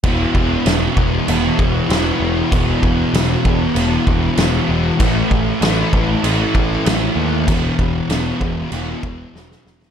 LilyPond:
<<
  \new Staff \with { instrumentName = "Distorted electric guitar" } { \clef bass \time 4/4 \key a \major \tempo 4 = 97 <e, b, e>4 <e, b, e>8 <b, e>8 <e, b, e>4 <e, b, e>4 | <e, b, e>4 <e, b, e>8 <b, e>8 <e, b, e>4 <e, b, e>4 | <a, e a>4 <a, e a>8 <e a>8 <a, e a>4 <a, e a>4 | <e, b, e>4 <e, b, e>8 <b, e>8 <e, b, e>4 <e, b, e>4 | }
  \new Staff \with { instrumentName = "Picked electric bass" } { \clef bass \time 4/4 \key a \major e,,8 e,,8 e,,8 e,,8 e,,8 e,,8 e,,8 e,,8 | e,,8 e,,8 e,,8 e,,8 e,,8 e,,8 e,,8 e,,8 | a,,8 a,,8 a,,8 a,,8 a,,8 a,,8 a,,8 dis,8 | e,,8 e,,8 e,,8 e,,8 e,,8 e,,8 e,,8 e,,8 | }
  \new DrumStaff \with { instrumentName = "Drums" } \drummode { \time 4/4 <cymc bd>8 bd8 <cymc sn>8 bd8 cymc8 bd8 <cymc sn>4 | <cymc bd>8 bd8 <cymc sn>8 bd8 cymc8 bd8 <cymc sn>4 | <cymc bd>8 bd8 <cymc sn>8 bd8 cymc8 bd8 <cymc sn>4 | <cymc bd>8 bd8 <cymc sn>8 bd8 cymc8 bd8 sn16 sn16 sn16 sn16 | }
>>